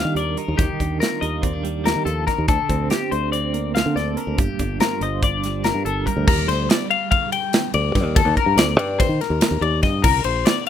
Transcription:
0.00 0.37 D#3 medium
0.00 1.63 G3 medium
0.00 0.63 D4 medium
0.00 0.63 F4 medium
0.00 0.18 A#4 medium
0.00 0.16 F5 medium
0.05 0.14 D#3 medium
0.15 0.35 D#2 medium
0.15 1.22 A#4 medium
0.15 0.38 D5 medium
0.15 closed hi-hat medium
0.37 0.56 D#3 medium
0.37 0.59 A#4 medium
0.37 closed hi-hat medium
0.48 0.58 D#2 medium
0.58 0.68 D#2 medium
0.58 2.05 D#3 medium
0.58 1.00 G4 medium
0.58 kick loud
0.58 closed hi-hat medium
0.80 0.99 D#2 medium
0.80 1.42 D4 medium
0.80 kick medium
0.80 closed hi-hat medium
1.00 2.90 F4 medium
1.00 1.22 A#4 medium
1.00 snare loud
1.00 closed hi-hat medium
1.21 1.92 D#2 medium
1.21 2.73 A#4 medium
1.21 1.43 D#5 medium
1.21 closed hi-hat medium
1.42 1.53 C4 medium
1.42 1.85 D5 medium
1.42 kick medium
1.42 closed hi-hat medium
1.53 2.48 D4 medium
1.63 1.84 G3 medium
1.63 closed hi-hat medium
1.84 2.06 G3 medium
1.84 2.05 A#4 medium
1.84 snare loud
1.84 closed hi-hat medium
1.96 2.05 D#3 medium
2.05 2.25 D#2 medium
2.05 2.26 F3 medium
2.05 2.27 A4 medium
2.05 closed hi-hat medium
2.27 2.48 D#3 medium
2.27 2.48 A#4 medium
2.27 kick medium
2.27 snare soft
2.27 closed hi-hat medium
2.38 2.48 D#2 medium
2.48 2.58 D2 medium
2.48 4.17 D3 medium
2.48 2.90 A4 medium
2.48 kick loud
2.48 closed hi-hat medium
2.69 2.89 D2 medium
2.69 3.32 C4 medium
2.69 kick medium
2.69 closed hi-hat medium
2.90 3.12 G4 medium
2.90 4.80 G4 medium
2.90 snare medium
2.90 closed hi-hat medium
3.12 3.82 D2 medium
3.12 3.32 C5 medium
3.12 3.96 C5 medium
3.12 closed hi-hat soft
3.32 3.74 C4 soft
3.32 3.74 D5 medium
3.32 closed hi-hat medium
3.54 5.06 A#3 medium
3.54 closed hi-hat medium
3.75 4.38 C4 medium
3.75 3.96 F5 medium
3.75 snare loud
3.75 closed hi-hat medium
3.86 3.95 D3 medium
3.96 4.15 D2 medium
3.96 4.39 A4 medium
3.96 4.17 D5 medium
3.96 snare soft
3.96 closed hi-hat soft
4.17 4.39 D3 medium
4.17 4.39 A#4 medium
4.17 closed hi-hat medium
4.27 4.37 D2 medium
4.38 4.48 G1 medium
4.38 6.05 G2 medium
4.38 4.80 G4 medium
4.38 kick loud
4.38 closed hi-hat medium
4.59 4.79 G1 medium
4.59 5.23 D4 medium
4.59 kick medium
4.59 closed hi-hat medium
4.80 6.25 F4 medium
4.80 5.02 A#4 medium
4.80 snare loud
4.80 closed hi-hat medium
5.01 5.71 G1 medium
5.01 5.86 C5 medium
5.01 5.23 D#5 medium
5.01 closed hi-hat medium
5.22 5.64 D4 medium
5.22 5.65 D5 medium
5.22 kick loud
5.22 closed hi-hat medium
5.43 8.17 G3 medium
5.43 snare soft
5.43 closed hi-hat medium
5.64 6.25 D4 medium
5.64 5.85 A#4 medium
5.64 snare medium
5.64 closed hi-hat medium
5.74 5.84 G2 medium
5.85 6.05 G1 medium
5.85 6.06 A4 medium
5.85 6.25 A#4 medium
5.85 closed hi-hat medium
6.06 6.28 G2 medium
6.06 6.26 A#4 medium
6.06 kick medium
6.06 closed hi-hat medium
6.17 6.26 D2 medium
6.27 6.47 D#2 medium
6.27 6.49 A#4 medium
6.27 kick loud
6.27 crash loud
6.48 6.67 D2 medium
6.48 6.69 C5 medium
6.48 snare soft
6.48 ride medium
6.69 6.90 D5 medium
6.69 snare loud
6.69 ride loud
6.91 7.10 F5 medium
6.91 ride medium
7.11 7.32 F5 medium
7.11 kick loud
7.11 ride loud
7.32 7.74 G5 medium
7.32 ride medium
7.53 snare loud
7.53 ride loud
7.74 7.93 D2 loud
7.74 8.16 D5 medium
7.74 ride medium
7.95 8.04 G2 medium
7.95 kick medium
7.95 snare soft
7.95 ride medium
8.04 8.24 D#2 loud
8.16 8.37 A4 loud
8.16 kick loud
8.16 ride loud
8.25 8.35 D#2 loud
8.37 8.58 A#4 medium
8.37 kick medium
8.37 ride medium
8.46 8.56 G2 medium
8.56 8.77 D2 medium
8.56 9.00 D5 medium
8.56 snare loud
8.56 ride loud
8.77 9.06 G2 loud
8.77 ride medium
9.00 9.21 C5 loud
9.00 kick loud
9.00 snare soft
9.00 ride loud
9.09 9.19 D#3 medium
9.21 9.63 A#4 medium
9.21 snare soft
9.21 ride medium
9.30 9.40 D#2 medium
9.41 snare loud
9.41 ride loud
9.51 9.61 D#2 medium
9.61 9.81 D#2 loud
9.61 9.82 D5 medium
9.61 ride medium
9.83 10.02 G2 medium
9.83 10.04 D#5 medium
9.83 kick medium
9.83 snare soft
9.83 ride medium
10.04 10.23 C2 loud
10.04 10.24 A#4 loud
10.04 kick loud
10.04 crash loud
10.24 10.44 A#1 medium
10.24 10.46 C5 medium
10.24 ride medium
10.46 10.67 D5 medium
10.46 snare loud
10.46 ride loud

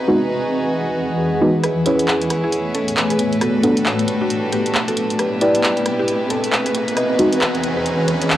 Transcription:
0.00 2.36 E3 medium
0.00 1.62 D#4 medium
0.00 1.62 F#4 medium
0.00 1.62 G#4 medium
0.00 1.64 G#4 medium
0.00 0.45 B4 medium
0.00 1.60 B4 medium
0.00 2.35 D#5 medium
0.00 2.36 F#5 medium
0.08 0.17 G#3 medium
0.08 0.17 B3 medium
0.08 0.17 D#4 medium
0.08 0.17 F#4 medium
1.41 1.50 G#3 medium
1.41 1.50 B3 medium
1.41 1.50 D#4 medium
1.41 1.50 F#4 loud
1.64 5.19 B3 medium
1.64 3.40 C#4 medium
1.64 3.40 E4 medium
1.64 3.40 G#4 medium
1.64 1.94 G#4 medium
1.64 5.16 B4 medium
1.64 1.94 B4 loud
1.64 cross-stick medium
1.64 closed hi-hat medium
1.64 riser medium
1.82 5.82 A3 medium
1.82 3.40 C#4 medium
1.82 3.40 E4 medium
1.82 3.40 G#4 medium
1.82 3.40 B4 medium
1.82 closed hi-hat loud
1.88 4.13 C#5 medium
1.99 closed hi-hat medium
2.06 3.41 G#5 medium
2.06 clap loud
2.22 closed hi-hat soft
2.30 cross-stick medium
2.30 closed hi-hat loud
2.44 2.66 E4 medium
2.44 2.66 G#4 medium
2.52 closed hi-hat medium
2.75 2.97 C#4 medium
2.75 2.97 A4 medium
2.75 closed hi-hat medium
2.88 closed hi-hat medium
2.97 clap loud
3.10 3.32 G#4 medium
3.10 3.32 B4 medium
3.10 closed hi-hat soft
3.19 closed hi-hat loud
3.33 closed hi-hat soft
3.41 5.17 G3 medium
3.41 6.71 D4 medium
3.41 3.72 F#4 medium
3.41 5.17 F#4 medium
3.41 3.72 A4 medium
3.41 5.17 A4 medium
3.41 cross-stick medium
3.41 closed hi-hat medium
3.64 3.73 B3 medium
3.64 3.73 D4 medium
3.64 3.73 F#4 medium
3.64 3.73 A4 medium
3.64 closed hi-hat loud
3.77 closed hi-hat medium
3.86 clap loud
3.99 closed hi-hat soft
4.08 closed hi-hat loud
4.21 4.43 D4 medium
4.21 4.43 F#4 medium
4.30 closed hi-hat medium
4.52 4.74 B3 medium
4.52 4.74 G4 medium
4.52 closed hi-hat loud
4.66 closed hi-hat medium
4.75 clap loud
4.88 5.10 F#4 medium
4.88 5.10 A4 medium
4.88 closed hi-hat soft
4.97 closed hi-hat loud
5.10 closed hi-hat soft
5.19 6.75 C4 medium
5.19 6.73 E4 medium
5.19 5.50 G4 medium
5.19 6.73 G4 medium
5.19 5.50 B4 loud
5.19 8.37 B4 medium
5.19 cross-stick medium
5.19 closed hi-hat medium
5.24 7.57 B4 medium
5.41 6.74 E4 medium
5.41 6.74 G4 medium
5.41 6.74 B4 medium
5.41 6.74 D5 medium
5.41 closed hi-hat medium
5.55 closed hi-hat medium
5.63 clap loud
5.77 closed hi-hat soft
5.86 cross-stick medium
5.86 closed hi-hat loud
5.99 6.21 E4 medium
5.99 6.21 G4 medium
6.08 closed hi-hat medium
6.30 6.52 C4 medium
6.30 6.52 A4 medium
6.30 closed hi-hat loud
6.44 closed hi-hat medium
6.53 clap loud
6.66 6.88 G#4 medium
6.66 6.88 B4 medium
6.66 closed hi-hat soft
6.75 8.37 E3 medium
6.75 8.37 D#4 medium
6.75 8.37 F#4 medium
6.75 8.37 G#4 medium
6.75 closed hi-hat loud
6.88 8.37 G#4 medium
6.88 closed hi-hat soft
6.97 7.28 B4 medium
6.97 7.28 D#5 loud
6.97 cross-stick medium
6.97 closed hi-hat medium
7.19 7.28 G#3 medium
7.19 7.28 B3 medium
7.19 7.28 D#4 medium
7.19 7.28 F#4 loud
7.19 8.37 D#5 medium
7.19 closed hi-hat loud
7.33 closed hi-hat medium
7.41 clap loud
7.55 closed hi-hat soft
7.64 8.37 F#5 medium
7.64 closed hi-hat medium
7.77 7.99 G#4 medium
7.77 7.99 B4 medium
7.86 closed hi-hat medium
8.08 8.30 G#4 medium
8.08 8.30 B4 medium
8.08 closed hi-hat medium
8.22 closed hi-hat medium
8.30 clap loud

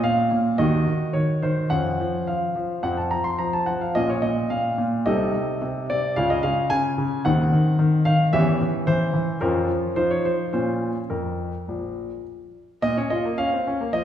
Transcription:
0.00 0.30 A#2 soft
0.00 0.55 C#4 soft
0.00 0.55 F4 soft
0.00 0.59 F5 medium
0.31 0.58 A#2 soft
0.58 0.86 D#2 soft
0.58 0.85 D#3 medium
0.58 1.66 D#4 soft
0.58 1.66 F#4 soft
0.58 1.14 D#5 medium
0.87 1.13 D#3 soft
1.13 1.42 D#3 soft
1.13 1.39 C#5 medium
1.42 1.70 D#3 soft
1.42 1.68 C5 medium
1.70 1.98 F2 soft
1.70 1.98 F3 soft
1.70 2.79 C#4 soft
1.70 2.79 F4 soft
1.70 2.27 F#5 medium
2.00 2.27 F3 soft
2.27 2.54 F3 soft
2.27 2.83 F5 soft
2.55 2.82 F3 soft
2.83 3.10 F2 soft
2.83 3.10 F3 soft
2.83 3.92 C4 soft
2.83 3.92 F4 soft
2.83 2.97 F#5 medium
2.97 3.11 A5 soft
3.11 3.38 F3 soft
3.11 3.25 A#5 medium
3.24 3.39 C6 medium
3.39 3.66 F3 soft
3.39 3.53 A#5 medium
3.53 3.67 A5 medium
3.66 3.94 F3 soft
3.66 3.81 F#5 medium
3.81 3.95 F5 soft
3.95 4.22 A#1 soft
3.95 4.21 A#2 soft
3.95 5.02 C#4 soft
3.95 5.02 F4 soft
3.95 4.09 D#5 medium
4.09 4.23 C#5 soft
4.22 4.49 A#2 soft
4.22 4.48 D#5 medium
4.50 4.77 A#2 soft
4.50 4.84 F5 medium
4.78 5.05 A#2 soft
5.06 5.33 C2 soft
5.06 5.32 C3 soft
5.06 6.13 D#4 soft
5.06 6.13 A4 soft
5.06 5.86 D#5 medium
5.34 5.60 C3 soft
5.62 5.89 C3 soft
5.90 6.16 C3 soft
5.90 6.17 D5 medium
6.16 6.43 C#2 soft
6.16 6.42 C#3 soft
6.16 7.21 C#4 soft
6.16 7.21 F4 soft
6.16 6.30 F5 medium
6.30 6.44 D#5 medium
6.43 6.69 C#3 soft
6.43 6.68 F5 medium
6.70 6.97 C#3 medium
6.70 7.21 G#5 medium
6.98 7.24 C#3 medium
7.25 7.52 D#2 soft
7.25 7.51 D#3 medium
7.25 8.29 C4 soft
7.25 8.29 D#4 soft
7.25 8.02 F#5 medium
7.52 7.77 D#3 soft
7.79 8.04 D#3 medium
8.05 8.32 D#3 medium
8.05 8.22 F5 medium
8.33 8.59 E2 soft
8.33 8.59 E3 medium
8.33 9.37 C#4 soft
8.33 9.36 G4 soft
8.33 8.65 E5 medium
8.61 8.86 E3 soft
8.87 9.12 E3 soft
8.87 9.41 C5 medium
9.14 9.40 E3 soft
9.41 9.67 F2 soft
9.41 9.67 F3 medium
9.41 9.92 C#4 soft
9.41 9.92 F4 soft
9.41 9.96 A#4 medium
9.69 9.95 F3 soft
9.96 10.24 F3 soft
9.96 10.49 D#4 soft
9.96 10.49 F4 soft
9.96 10.10 C5 medium
10.11 10.24 C#5 medium
10.25 10.53 F3 soft
10.25 10.50 C5 medium
10.53 10.93 A#2 soft
10.53 10.99 C#4 soft
10.53 10.99 F4 soft
10.53 10.87 C5 medium
11.10 11.51 F2 soft
11.10 12.21 A#4 soft
11.68 12.08 A#1 soft
12.82 12.96 A#2 medium
12.82 12.97 D#5 medium
12.97 13.11 C#4 soft
12.97 13.11 C#5 medium
13.10 13.26 F4 soft
13.10 13.35 D#5 medium
13.25 13.39 A#3 soft
13.38 13.53 C#4 soft
13.38 13.93 F5 medium
13.53 13.66 C4 soft
13.67 13.81 C#4 soft
13.81 13.95 A#3 soft
13.93 14.04 F3 soft
13.93 14.04 D#5 medium

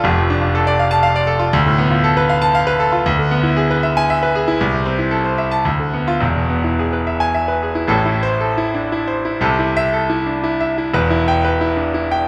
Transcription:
0.04 1.49 F1 loud
0.04 1.49 F2 loud
0.18 0.37 F3 medium
0.30 0.49 D4 loud
0.41 0.61 F4 medium
0.55 0.74 A4 loud
0.67 0.86 D5 loud
0.79 0.99 F5 loud
0.91 1.11 A5 loud
1.03 1.23 F5 loud
1.16 1.36 D5 loud
1.27 1.48 A4 loud
1.39 1.53 F4 loud
1.53 3.01 D2 loud
1.66 1.86 A2 medium
1.78 1.99 B3 medium
1.90 2.11 F4 medium
2.04 2.24 A4 loud
2.17 2.37 B4 loud
2.29 2.50 F5 loud
2.42 2.62 A5 loud
2.55 2.75 F5 loud
2.67 2.87 B4 loud
2.80 3.00 A4 loud
2.92 3.05 F4 medium
3.06 4.57 D2 loud
3.19 3.39 D3 medium
3.31 3.52 B3 medium
3.43 3.65 E4 medium
3.57 3.78 G#4 loud
3.71 3.91 B4 medium
3.83 4.04 E5 loud
3.97 4.17 G#5 loud
4.10 4.30 E5 loud
4.23 4.43 B4 medium
4.35 4.56 G#4 loud
4.48 4.60 E4 medium
4.61 5.62 C2 loud
4.73 4.94 C3 medium
4.85 5.06 C4 medium
4.99 5.20 E4 medium
5.11 5.32 A4 medium
5.25 5.46 C5 medium
5.38 5.60 E5 medium
5.51 5.65 A5 loud
5.65 6.20 D2 loud
5.79 6.02 D3 medium
5.93 6.16 B3 medium
6.08 6.22 F4 loud
6.21 7.84 E1 medium
6.21 7.85 E2 loud
6.36 6.59 B2 medium
6.50 6.73 B3 medium
6.64 6.87 E4 medium
6.79 7.01 G#4 medium
6.93 7.15 B4 medium
7.07 7.29 E5 medium
7.20 7.42 G#5 loud
7.34 7.56 E5 medium
7.48 7.70 B4 medium
7.62 7.84 G#4 medium
7.75 7.89 E4 medium
7.88 9.38 A1 loud
7.88 9.39 A2 loud
7.88 8.17 A4 loud
8.05 8.34 E4 medium
8.23 8.51 C5 loud
8.41 8.68 A4 medium
8.58 8.85 E4 medium
8.74 8.92 D4 medium
8.92 9.19 E4 medium
9.08 9.35 C5 medium
9.25 9.42 E4 medium
9.41 10.89 C2 loud
9.41 10.90 C3 loud
9.41 9.69 A4 loud
9.59 9.87 E4 medium
9.77 10.04 E5 loud
9.93 10.20 A4 medium
10.09 10.37 E4 medium
10.27 10.44 D4 medium
10.44 10.71 E4 medium
10.61 10.88 E5 medium
10.78 10.95 E4 medium
10.94 12.28 E1 loud
10.94 12.28 E2 loud
10.94 11.21 B4 loud
11.10 11.38 E4 medium
11.28 11.54 G5 loud
11.45 11.71 B4 medium
11.61 11.88 E4 medium
11.77 11.94 D4 medium
11.94 12.21 E4 medium
12.11 12.28 G5 loud

